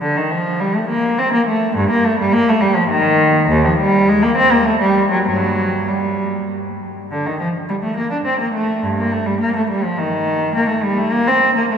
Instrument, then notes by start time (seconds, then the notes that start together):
cello
0.01 D3
0.17 D#3
0.31 F3
0.60 G3
0.75 A3
0.90 A#3
1.18 C4
1.33 A#3
1.48 A3
1.76 G2
1.90 A#3
2.05 A3
2.19 G3
2.33 A#3
2.49 A3
2.61 G3
2.75 F3
2.90 D#3
3.49 D#2
3.65 F3
3.79 G3
4.08 G#3
4.23 A#3
4.37 C4
4.52 A#3
4.65 A3
4.80 G3
5.11 F#3
5.26 G2 F#3
5.88 G3
7.11 D3
7.26 D#3
7.40 F3
7.69 G3
7.83 A3
7.97 A#3
8.11 D4
8.25 C4
8.40 A#3
8.54 A3
8.83 G2
8.98 A#3
9.12 A3
9.26 G3
9.41 A#3
9.56 A3
9.70 G3
9.84 F3
9.98 D#3
10.55 A#3
10.69 A3
10.83 G3
10.97 A3
11.12 A#3
11.27 C4
11.55 A#3
11.70 A3